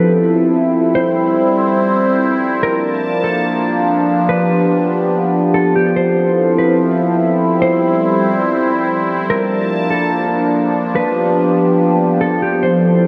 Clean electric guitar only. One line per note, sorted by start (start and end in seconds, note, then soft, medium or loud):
0.00 0.11 B4 medium
0.95 2.16 C5 loud
2.63 3.21 A#4 loud
3.24 3.44 A4 medium
4.29 5.50 B4 loud
5.54 5.74 A4 medium
5.76 5.95 G4 medium
5.96 6.55 C5 loud
6.58 6.78 B4 medium
7.62 8.83 C5 loud
9.30 9.88 A#4 loud
9.90 10.11 A4 medium
10.96 12.16 B4 loud
12.21 12.40 A4 medium
12.42 12.62 G4 medium
12.63 13.07 C5 loud